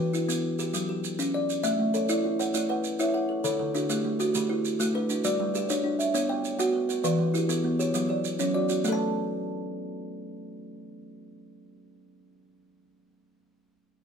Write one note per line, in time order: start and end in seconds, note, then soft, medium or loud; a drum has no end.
0.00 0.13 E3 medium
0.00 0.29 B4 medium
0.13 0.59 E4 medium
0.13 maracas medium
0.29 0.59 B3 medium
0.29 maracas medium
0.59 0.88 G4 medium
0.59 maracas medium
0.74 1.04 F#3 medium
0.74 maracas medium
0.89 1.34 G4 medium
1.04 maracas medium
1.19 1.49 C#4 medium
1.19 maracas medium
1.34 1.79 D5 medium
1.49 maracas medium
1.63 1.94 A3 medium
1.63 2.09 E5 medium
1.63 maracas medium
1.79 2.09 A3 medium
1.94 2.39 A4 medium
1.94 2.39 C#5 medium
1.94 maracas soft
2.09 2.39 E4 medium
2.09 2.54 D5 medium
2.09 maracas medium
2.24 2.53 E4 medium
2.39 2.84 C#5 medium
2.39 2.69 F#5 medium
2.39 maracas medium
2.54 2.84 A3 medium
2.54 2.84 E4 medium
2.54 3.00 D5 medium
2.54 maracas medium
2.69 3.14 B4 medium
2.69 3.15 F#5 medium
2.84 maracas medium
2.99 3.29 E4 medium
2.99 3.30 C#5 medium
2.99 3.45 E5 medium
2.99 maracas medium
3.14 3.28 A4 medium
3.14 3.59 F#5 medium
3.29 3.59 A4 medium
3.44 3.74 D3 medium
3.44 3.89 A4 medium
3.44 3.74 C#5 medium
3.44 maracas medium
3.59 3.89 D3 medium
3.75 4.19 D4 medium
3.75 4.20 F#4 medium
3.75 maracas soft
3.89 4.20 A3 medium
3.89 4.33 G4 medium
3.89 maracas medium
4.04 4.33 A3 medium
4.19 4.65 F#4 medium
4.19 4.48 B4 medium
4.19 maracas medium
4.34 4.65 D3 medium
4.34 4.64 A3 medium
4.34 4.79 G4 medium
4.34 maracas medium
4.49 4.94 E4 medium
4.49 4.94 B4 medium
4.65 maracas medium
4.79 5.10 A3 medium
4.79 5.09 F#4 medium
4.79 5.24 A4 medium
4.79 maracas medium
4.94 5.08 D4 medium
4.94 5.40 B4 medium
5.09 5.39 D4 medium
5.09 maracas medium
5.24 5.54 G3 medium
5.24 5.54 F#4 medium
5.24 5.69 D5 medium
5.24 maracas medium
5.40 5.69 G3 medium
5.54 6.00 G4 medium
5.54 5.99 B4 medium
5.54 maracas medium
5.69 6.00 D4 medium
5.69 6.13 C#5 medium
5.69 maracas medium
5.84 6.13 D4 medium
5.99 6.44 E5 medium
5.99 maracas medium
6.14 6.44 B3 medium
6.14 6.29 D4 medium
6.14 6.44 C#5 medium
6.14 maracas medium
6.29 6.74 C#5 medium
6.29 6.74 G5 medium
6.45 maracas medium
6.59 6.89 B3 medium
6.59 6.89 F#4 medium
6.59 7.04 F#5 medium
6.59 maracas medium
6.73 6.88 B4 medium
6.89 7.19 B4 medium
6.89 maracas medium
7.03 7.34 E3 medium
7.03 7.49 B4 medium
7.03 7.34 D5 medium
7.03 maracas medium
7.19 7.49 E3 medium
7.34 7.79 E4 medium
7.34 7.79 G4 medium
7.34 maracas soft
7.49 7.79 B3 medium
7.49 7.94 A4 medium
7.49 maracas medium
7.64 7.93 B3 medium
7.79 8.08 G4 medium
7.79 8.24 C#5 medium
7.79 maracas medium
7.94 8.24 F#3 medium
7.94 8.09 B3 medium
7.94 maracas medium
8.09 8.54 G4 medium
8.09 8.54 D5 medium
8.24 maracas medium
8.39 8.69 F#3 medium
8.39 8.69 C#4 medium
8.39 8.84 C#5 medium
8.39 maracas medium
8.54 8.68 F#4 medium
8.54 8.99 D5 medium
8.69 8.99 F#4 medium
8.69 maracas medium
8.84 11.88 A3 medium
8.84 8.87 A4 medium
8.84 maracas medium
8.88 11.92 A4 medium
8.88 11.96 A5 medium